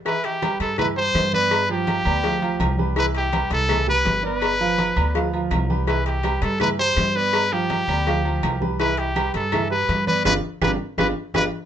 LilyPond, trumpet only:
\new Staff \with { instrumentName = "Trumpet" } { \time 4/4 \key c \major \tempo 4 = 165 b'8 g'4 a'8 b'8 c''4 b'8~ | b'8 g'2. r8 | b'8 g'4 a'4 b'4 b'8~ | b'2. r4 |
b'8 g'4 a'8 b'8 c''4 b'8~ | b'8 g'2. r8 | b'8 g'4 a'4 b'4 b'8 | b'8 r8 b'8 r8 b'8 r8 b'8 r8 | }